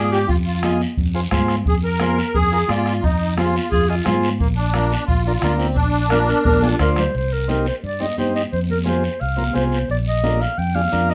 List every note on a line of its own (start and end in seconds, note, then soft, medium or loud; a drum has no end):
0.00 0.29 G#2 loud
0.00 0.19 F4 medium
0.00 0.10 G#4 loud
0.00 0.19 G#4 medium
0.00 0.19 D5 medium
0.12 0.29 G4 loud
0.12 short guiro medium
0.28 0.84 F2 loud
0.28 0.36 F4 loud
0.28 bombo low medium
0.28 high conga soft
0.28 long guiro medium
0.45 0.77 F4 medium
0.63 0.81 F4 medium
0.63 0.81 G#4 medium
0.63 0.82 D#5 medium
0.63 bombo rim medium
0.63 high conga medium
0.63 short guiro medium
0.81 short guiro medium
0.97 1.25 F2 medium
0.97 bombo low medium
0.97 high conga soft
0.97 long guiro medium
1.15 1.21 F4 medium
1.15 1.21 G#4 medium
1.15 1.21 C5 medium
1.31 1.66 G#2 loud
1.31 1.55 F4 medium
1.31 1.56 G#4 medium
1.31 1.56 C5 medium
1.31 bombo low medium
1.31 bombo rim medium
1.31 high conga medium
1.31 low conga medium
1.31 short guiro medium
1.48 bombo rim medium
1.48 short guiro medium
1.66 2.21 F2 loud
1.66 1.75 G#4 loud
1.66 bombo low medium
1.66 high conga soft
1.66 long guiro medium
1.84 2.36 A#4 loud
2.00 2.18 F4 medium
2.00 2.18 G#4 medium
2.00 2.19 C5 medium
2.00 bombo rim medium
2.00 high conga medium
2.00 short guiro medium
2.19 short guiro medium
2.35 2.62 F2 medium
2.35 2.70 G#4 loud
2.35 bombo low medium
2.35 high conga soft
2.35 long guiro medium
2.52 2.58 F4 medium
2.52 2.58 G#4 medium
2.52 2.58 A#4 medium
2.68 3.04 G#2 loud
2.68 3.04 F4 loud
2.68 2.93 F4 medium
2.68 2.93 G#4 medium
2.68 2.93 D5 medium
2.68 bombo rim medium
2.68 high conga medium
2.68 short guiro medium
2.86 bombo rim medium
2.86 short guiro medium
3.03 3.58 F2 loud
3.03 3.35 D#4 loud
3.03 bombo low medium
3.03 high conga soft
3.03 long guiro medium
3.37 3.55 F4 medium
3.37 3.85 F4 medium
3.37 3.55 G#4 medium
3.37 3.56 C5 medium
3.37 bombo rim medium
3.37 high conga medium
3.37 short guiro medium
3.56 short guiro medium
3.71 3.99 F2 medium
3.71 3.90 G#4 loud
3.71 bombo low medium
3.71 high conga soft
3.71 long guiro medium
3.89 4.06 F4 loud
3.89 3.95 F4 medium
3.89 3.95 G#4 medium
3.89 3.95 D#5 medium
4.04 4.42 G#2 loud
4.04 4.29 F4 medium
4.04 4.30 F4 medium
4.04 4.29 G#4 medium
4.04 4.30 C5 loud
4.04 bombo rim medium
4.04 high conga medium
4.04 low conga medium
4.04 short guiro medium
4.23 short guiro medium
4.40 4.95 A#1 loud
4.40 4.48 A#3 loud
4.40 bombo low medium
4.40 high conga soft
4.40 long guiro medium
4.56 5.04 D4 loud
4.74 4.92 D4 medium
4.74 4.92 F4 medium
4.74 4.93 A#4 medium
4.74 bombo rim medium
4.74 high conga medium
4.74 short guiro medium
4.92 short guiro medium
5.07 5.36 A#1 medium
5.07 5.23 F4 loud
5.07 bombo low medium
5.07 high conga soft
5.07 long guiro medium
5.25 5.32 D4 medium
5.25 5.38 F4 medium
5.25 5.32 F4 medium
5.25 5.33 A#4 medium
5.39 5.76 D2 loud
5.39 5.57 F4 loud
5.39 bombo rim medium
5.39 short guiro medium
5.44 5.67 D4 medium
5.44 5.67 F4 medium
5.44 5.67 A#4 medium
5.44 high conga medium
5.57 5.76 C4 medium
5.57 short guiro medium
5.75 6.32 A#1 loud
5.75 6.75 D4 loud
5.75 bombo low medium
5.75 high conga soft
5.75 long guiro medium
6.10 6.30 D4 medium
6.10 6.30 F4 medium
6.10 6.18 A#4 medium
6.10 6.30 A#4 medium
6.10 bombo rim medium
6.10 high conga medium
6.10 short guiro medium
6.28 6.44 A#4 loud
6.28 short guiro medium
6.45 6.73 A#1 medium
6.45 6.65 A#4 loud
6.45 bombo low medium
6.45 high conga loud
6.45 long guiro medium
6.62 6.68 D4 medium
6.62 6.69 F4 medium
6.62 6.80 F4 loud
6.62 6.69 G#4 medium
6.62 high conga medium
6.79 7.07 D2 loud
6.79 7.04 D4 medium
6.79 7.04 F4 medium
6.79 6.89 A#4 medium
6.79 7.04 C5 medium
6.79 bombo low medium
6.79 bombo rim medium
6.79 short guiro medium
6.96 7.14 C5 medium
6.96 bombo rim medium
6.96 low conga medium
6.96 short guiro medium
7.15 7.70 C2 medium
7.15 7.34 C5 medium
7.15 high conga soft
7.15 long guiro medium
7.33 7.49 A#4 medium
7.48 7.66 C4 medium
7.48 7.67 D#4 medium
7.48 7.67 G4 medium
7.48 7.66 A#4 medium
7.48 high conga medium
7.48 short guiro medium
7.66 7.75 C5 medium
7.66 short guiro medium
7.84 8.11 G2 medium
7.84 8.04 D5 medium
7.84 high conga soft
7.84 long guiro medium
8.00 8.06 C4 medium
8.00 8.06 D#4 medium
8.00 8.06 G4 medium
8.00 8.17 D#5 medium
8.00 high conga medium
8.18 8.45 G2 medium
8.18 8.42 C4 medium
8.18 8.42 D#4 medium
8.18 8.42 G4 medium
8.18 8.34 C5 medium
8.18 high conga medium
8.18 short guiro medium
8.35 8.43 D#5 medium
8.35 short guiro medium
8.52 9.07 F2 medium
8.52 8.60 C5 medium
8.52 high conga soft
8.52 long guiro medium
8.70 8.78 A#4 medium
8.70 high conga medium
8.85 9.03 C4 medium
8.85 9.04 F4 medium
8.85 9.04 G#4 medium
8.85 9.22 C5 medium
8.85 high conga medium
8.85 short guiro medium
9.04 short guiro medium
9.21 9.48 C2 medium
9.21 9.55 F5 medium
9.21 high conga soft
9.21 long guiro medium
9.37 9.43 C4 medium
9.37 9.44 F4 medium
9.37 9.44 A#4 medium
9.37 high conga medium
9.53 9.83 C2 medium
9.53 9.78 C4 medium
9.53 9.79 F4 medium
9.53 9.79 G#4 medium
9.53 9.63 C5 medium
9.53 high conga medium
9.53 short guiro medium
9.72 9.88 C5 medium
9.72 short guiro medium
9.89 10.44 A#1 medium
9.89 9.98 D5 medium
9.89 high conga soft
9.89 long guiro medium
10.08 10.42 D#5 medium
10.23 10.42 D4 medium
10.23 10.42 F4 medium
10.23 10.42 A#4 medium
10.23 high conga medium
10.23 short guiro medium
10.41 10.60 F5 medium
10.41 short guiro medium
10.58 10.86 F2 medium
10.58 10.77 G5 medium
10.58 high conga soft
10.58 long guiro medium
10.75 10.81 D4 medium
10.75 10.82 F4 medium
10.75 10.82 G#4 medium
10.75 11.12 F5 loud
10.75 high conga medium
10.92 11.14 F2 loud
10.92 11.14 D4 medium
10.92 11.14 F4 medium
10.92 11.14 A#4 medium
10.92 high conga medium
10.92 short guiro medium
11.10 11.14 D#5 loud
11.10 short guiro medium